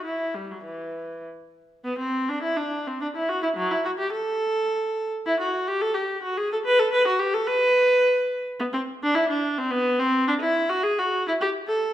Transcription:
\new Staff \with { instrumentName = "Viola" } { \time 3/4 \key e \minor \tempo 4 = 107 e'8 g16 fis16 e4 r4 | b16 c'8 d'16 e'16 d'8 c'16 d'16 e'16 fis'16 e'16 | fis16 e'16 fis'16 g'16 a'4.~ a'16 r16 | e'16 fis'8 g'16 a'16 g'8 fis'16 gis'16 a'16 b'16 a'16 |
b'16 fis'16 g'16 a'16 b'4.~ b'16 r16 | \key c \major b16 c'8 d'16 e'16 d'8 c'16 b8 c'8 | d'16 e'8 fis'16 gis'16 fis'8 e'16 g'8 a'8 | }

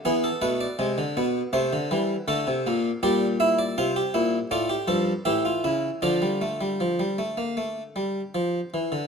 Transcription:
<<
  \new Staff \with { instrumentName = "Harpsichord" } { \time 4/4 \key d \minor \tempo 4 = 80 << { r1 | d''8 e''16 d''16 c''4 d''4 e''4 | d''2.~ d''8 r8 | } \\ { gis'16 a'16 b'16 d''4~ d''16 c''4 a'4 | g'8 e'8 f'16 g'16 e'8 f'16 g'16 a'8 g'16 f'16 e'8 | f'2.~ f'8 r8 | } >> }
  \new Staff \with { instrumentName = "Harpsichord" } { \clef bass \time 4/4 \key d \minor << { b8 a8 gis8 b8 a8 g8 a8 bes8 | g2 a8 f8 e4 | f16 g16 a16 g16 f16 g16 a16 bes16 a8 g8 f8 e16 d16 | } \\ { e8 b,8 c16 d16 b,8 c16 d16 e8 d16 c16 bes,8 | bes,4 c8 bes,8 a,8 g,8 a,8 cis8 | d2.~ d8 r8 | } >> }
>>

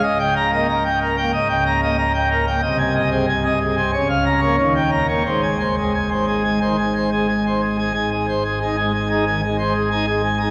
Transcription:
<<
  \new Staff \with { instrumentName = "Pipe organ" } { \time 4/4 \key aes \major \tempo 4 = 92 ees''16 g''16 bes''16 ees''16 bes''16 g''16 bes'16 g''16 ees''16 g''16 bes''16 ees''16 bes''16 g''16 bes'16 g''16 | ees''16 aes''16 ees''16 aes'16 aes''16 ees''16 aes'16 aes''16 des''16 f''16 bes''16 des''16 des''16 g''16 bes''16 des''16 | c''16 aes''16 c''16 aes'16 aes''16 c''16 aes'16 aes''16 c''16 aes''16 c''16 aes'16 aes''16 c''16 aes'16 aes''16 | aes''16 aes'16 c''16 aes'16 aes''16 aes'16 aes''16 aes'16 aes''16 aes'16 c''16 aes'16 aes''16 aes'16 aes''16 aes'16 | }
  \new Staff \with { instrumentName = "Pipe organ" } { \clef bass \time 4/4 \key aes \major << { des,8. bes16 r8. bes16 des,8. bes16 r8. bes16 | c,8. c'16 r8. c'16 des,8. bes16 ees,8. bes16 | aes,8. aes16 r8. aes16 ees16 r8 aes16 r8. aes16 | aes,4 ees'16 aes16 r16 ees'16 ees16 r8. ees'16 aes16 r16 ees'16 | } \\ { des,,2 des,,2 | c,,2 des,,4 ees,,4 | aes,,1 | aes,,1 | } >> }
>>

